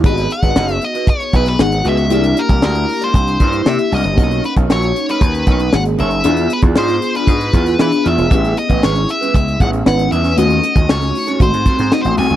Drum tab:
HH |xxxx-xxxxxxx-xxx|xxxx-xoxxxxx-xox|xxxx-xxxxxxx-xxx|xxxx-xxxxxxx-xxx|
SD |----oo-----oo---|----o-------o---|----o-------o---|----oo-----oo---|
BD |o--o----o-o-----|---o----o-o-----|o--o----o-o-----|---o----o-o-----|

HH |xxxx-xxxxxxx-xxx|xxxx-xoxxxxx-xox|
SD |----o-------o--o|----oo-----oo---|
BD |o--o----o-o-----|---o----o-o-----|